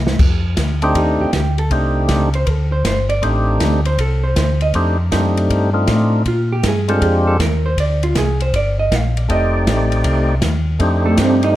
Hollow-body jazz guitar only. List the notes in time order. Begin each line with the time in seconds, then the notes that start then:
0.84 G4
0.98 D#4
1.21 G4
1.36 G4
1.59 A4
2.35 C5
2.50 A4
2.72 C5
2.87 C5
3.09 D5
3.86 C5
4.01 A4
4.24 C5
4.39 C5
4.62 D#5
6.28 F4
6.52 G4
6.67 G#4
6.89 A4
7.04 G#4
7.27 A4
7.42 A#4
7.66 C5
7.80 D5
8.04 F4
8.18 G#4
8.42 C5
8.56 D5
8.79 D#5
8.95 F5
9.18 D5
9.32 D#5
11.06 A3 A4
11.21 C4 C5
11.44 D#4 D#5